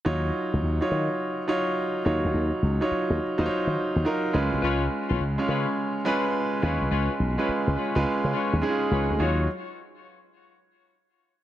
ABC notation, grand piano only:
X:1
M:4/4
L:1/16
Q:"Swing 16ths" 1/4=105
K:Ebm
V:1 name="Grand piano"
[G,EFd]4 z [G,EFd]4 z [G,EFd]3 z [G,EFd]2- | [G,EFd]2 z [G,EFd]3 z [G,EF=cd]4 z [G,EFB]2 [A,DF_c]2- | [A,DFc]4 z [A,DFd]4 z [A,DFc]3 z [A,DFc]2- | [A,DFc]2 z [A,DFc]3 z [A,DFc]4 z [A,DEFA]3 z |
[G,EFd]2 z12 z2 |]